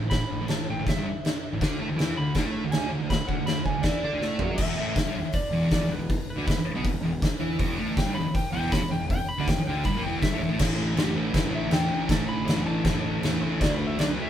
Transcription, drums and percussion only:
0.10 kick loud
0.10 snare loud
0.10 crash medium
0.48 snare loud
0.48 crash medium
0.87 kick loud
0.87 snare loud
0.87 crash medium
1.25 snare loud
1.25 crash medium
1.61 kick loud
1.61 snare loud
1.61 crash medium
1.99 snare loud
1.99 crash medium
2.35 kick loud
2.35 snare loud
2.35 crash medium
2.72 snare loud
2.72 crash medium
3.10 kick loud
3.10 snare loud
3.10 crash medium
3.29 kick medium
3.47 snare loud
3.47 crash medium
3.66 kick medium
3.83 kick loud
3.83 snare loud
3.83 crash medium
4.22 snare medium
4.39 floor tom medium
4.58 kick loud
4.58 crash loud
4.96 kick loud
4.96 snare loud
4.96 open hi-hat medium
5.33 kick loud
5.33 open hi-hat medium
5.71 kick loud
5.71 snare loud
5.71 open hi-hat medium
6.10 kick loud
6.10 open hi-hat medium
6.48 kick loud
6.48 snare loud
6.48 open hi-hat medium
6.84 kick loud
6.84 open hi-hat medium
7.22 kick loud
7.22 snare loud
7.22 open hi-hat medium
7.59 kick loud
7.59 open hi-hat medium
7.97 kick loud
7.97 snare loud
7.97 open hi-hat medium
8.35 kick loud
8.35 open hi-hat medium
8.72 kick loud
8.72 snare loud
8.72 open hi-hat medium
9.10 kick loud
9.10 open hi-hat medium
9.48 kick loud
9.48 snare loud
9.48 open hi-hat medium
9.84 kick loud
9.84 open hi-hat medium
10.22 kick loud
10.22 snare loud
10.22 open hi-hat medium
10.59 kick loud
10.59 snare loud
10.59 crash loud
10.59 crash medium
10.97 snare loud
10.97 crash medium
11.34 kick loud
11.34 snare loud
11.34 crash medium
11.71 snare loud
11.71 crash medium
12.09 kick loud
12.09 snare loud
12.09 crash medium
12.48 snare loud
12.48 crash medium
12.85 kick loud
12.85 snare loud
12.85 crash medium
13.23 snare loud
13.23 crash medium
13.61 kick loud
13.61 snare loud
13.61 crash medium
13.99 snare loud
13.99 crash medium

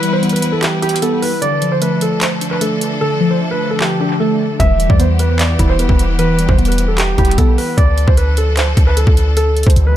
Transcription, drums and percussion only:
0.03 closed hi-hat medium
0.23 closed hi-hat soft
0.29 closed hi-hat medium
0.36 closed hi-hat medium
0.42 closed hi-hat medium
0.63 clap loud
0.63 closed hi-hat medium
0.82 closed hi-hat soft
0.89 closed hi-hat medium
0.96 closed hi-hat medium
1.02 closed hi-hat medium
1.22 open hi-hat medium
1.42 closed hi-hat medium
1.62 closed hi-hat medium
1.82 closed hi-hat medium
2.01 closed hi-hat medium
2.21 clap loud
2.21 closed hi-hat medium
2.41 closed hi-hat medium
2.61 closed hi-hat medium
2.81 closed hi-hat medium
3.80 clap loud
4.60 kick loud
4.60 closed hi-hat medium
4.80 closed hi-hat medium
4.90 kick loud
5.00 closed hi-hat medium
5.19 closed hi-hat medium
5.39 clap loud
5.39 closed hi-hat medium
5.59 kick medium
5.59 closed hi-hat medium
5.79 closed hi-hat medium
5.89 kick loud
5.99 closed hi-hat medium
6.19 closed hi-hat medium
6.39 closed hi-hat medium
6.49 kick loud
6.59 closed hi-hat soft
6.65 closed hi-hat medium
6.72 closed hi-hat medium
6.78 closed hi-hat medium
6.98 clap loud
6.98 closed hi-hat medium
7.18 kick medium
7.18 closed hi-hat soft
7.25 closed hi-hat medium
7.31 closed hi-hat medium
7.38 kick loud
7.38 closed hi-hat medium
7.58 open hi-hat medium
7.78 kick loud
7.78 closed hi-hat medium
7.98 closed hi-hat medium
8.08 kick loud
8.17 closed hi-hat medium
8.37 closed hi-hat medium
8.57 clap loud
8.57 closed hi-hat medium
8.77 kick medium
8.77 closed hi-hat medium
8.97 closed hi-hat medium
9.07 kick loud
9.17 closed hi-hat medium
9.37 closed hi-hat medium
9.57 closed hi-hat soft
9.63 kick medium
9.63 closed hi-hat medium
9.70 closed hi-hat medium
9.76 closed hi-hat medium

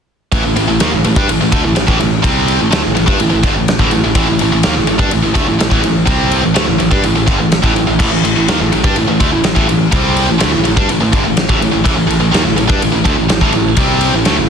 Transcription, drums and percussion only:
0.32 kick loud
0.32 ride loud
0.56 ride medium
0.80 snare loud
0.80 ride medium
1.04 ride medium
1.16 kick loud
1.29 ride loud
1.52 kick loud
1.52 ride medium
1.76 snare loud
1.76 ride loud
1.88 kick loud
1.88 snare soft
2.00 ride medium
2.24 kick loud
2.24 ride loud
2.48 ride medium
2.72 snare loud
2.72 ride medium
2.97 ride medium
3.08 kick loud
3.20 ride medium
3.44 kick loud
3.44 snare soft
3.44 ride medium
3.68 snare loud
3.68 ride medium
3.79 kick loud
3.91 ride medium
4.15 kick loud
4.15 ride loud
4.39 ride medium
4.63 snare loud
4.63 ride medium
4.87 ride medium
4.99 kick loud
5.11 ride loud
5.35 kick loud
5.35 snare soft
5.35 ride medium
5.60 snare loud
5.60 ride loud
5.71 kick loud
5.71 snare soft
5.84 ride medium
6.07 kick loud
6.07 ride loud
6.32 ride medium
6.56 snare loud
6.56 ride medium
6.80 ride medium
6.91 kick loud
7.04 ride medium
7.28 kick loud
7.28 snare soft
7.28 ride medium
7.52 snare loud
7.52 ride medium
7.64 kick loud
7.64 snare soft
7.76 ride medium
8.00 kick loud
8.00 crash loud
8.25 ride medium
8.48 snare loud
8.48 ride loud
8.72 ride medium
8.84 kick loud
8.96 ride medium
9.20 kick loud
9.20 ride medium
9.44 snare loud
9.44 ride loud
9.56 kick loud
9.69 ride medium
9.92 kick loud
9.92 ride loud
10.17 ride medium
10.40 snare loud
10.40 ride loud
10.65 ride medium
10.77 kick loud
10.89 ride medium
11.13 kick loud
11.13 ride medium
11.37 snare loud
11.37 ride medium
11.49 kick loud
11.49 snare soft
11.62 ride medium
11.86 kick loud
11.86 ride loud
12.10 ride medium
12.34 snare loud
12.34 ride medium
12.58 ride medium
12.70 kick loud
12.82 ride medium
13.05 kick loud
13.05 ride medium
13.29 snare loud
13.29 ride medium
13.41 kick loud
13.53 ride medium
13.77 kick loud
13.77 ride loud
14.01 ride medium
14.25 snare loud
14.25 ride loud

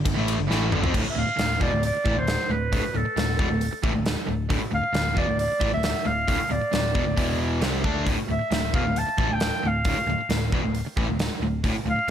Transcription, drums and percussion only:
0.05 kick loud
0.05 ride medium
0.28 ride medium
0.51 snare medium
0.72 mid tom medium
0.84 floor tom medium
0.94 kick loud
0.94 crash medium
1.39 snare loud
1.39 open hi-hat medium
1.61 kick loud
1.83 open hi-hat medium
2.06 kick loud
2.27 snare loud
2.27 open hi-hat medium
2.73 kick loud
2.73 open hi-hat medium
3.17 snare loud
3.17 open hi-hat soft
3.39 kick loud
3.61 open hi-hat soft
3.84 kick loud
4.06 snare loud
4.06 open hi-hat medium
4.50 kick loud
4.50 open hi-hat soft
4.94 snare loud
4.94 open hi-hat soft
5.17 kick loud
5.39 open hi-hat medium
5.61 kick loud
5.83 snare loud
5.83 open hi-hat medium
6.28 kick loud
6.28 open hi-hat medium
6.73 snare loud
6.73 open hi-hat medium
6.95 kick medium
7.17 kick loud
7.17 open hi-hat medium
7.62 snare loud
7.62 open hi-hat medium
7.84 kick medium
8.06 kick loud
8.06 open hi-hat soft
8.52 snare medium
8.52 open hi-hat soft
8.74 kick loud
8.96 open hi-hat medium
9.18 kick loud
9.40 snare loud
9.40 open hi-hat medium
9.85 kick medium
9.85 open hi-hat medium
10.30 snare loud
10.30 open hi-hat medium
10.52 kick loud
10.75 open hi-hat medium
10.97 kick loud
11.19 snare loud
11.19 open hi-hat medium
11.64 kick loud
11.64 open hi-hat medium

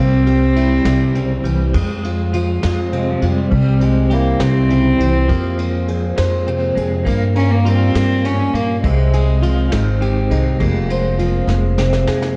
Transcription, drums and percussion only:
0.27 ride soft
0.56 ride medium
0.85 snare medium
0.85 ride medium
1.15 ride soft
1.45 ride soft
1.74 kick medium
1.74 ride medium
2.04 ride soft
2.33 ride medium
2.63 snare medium
2.63 ride medium
2.93 ride soft
3.22 ride soft
3.52 kick medium
3.52 ride medium
3.81 ride soft
4.11 ride soft
4.40 snare medium
4.40 ride medium
4.70 ride soft
5.00 ride soft
5.29 kick medium
5.29 ride medium
5.58 ride soft
5.88 ride soft
6.18 snare medium
6.18 ride medium
6.48 ride soft
6.77 ride soft
7.07 kick medium
7.07 ride medium
7.36 ride medium
7.66 ride medium
7.95 snare medium
7.95 ride medium
8.25 ride medium
8.55 ride soft
8.84 kick medium
8.84 ride medium
9.13 ride medium
9.43 ride medium
9.72 snare medium
9.72 ride medium
10.02 ride soft
10.31 ride soft
10.60 kick medium
10.60 ride medium
10.90 ride soft
11.19 ride medium
11.48 snare soft
11.78 snare medium
11.93 snare medium
12.07 snare medium
12.22 snare medium

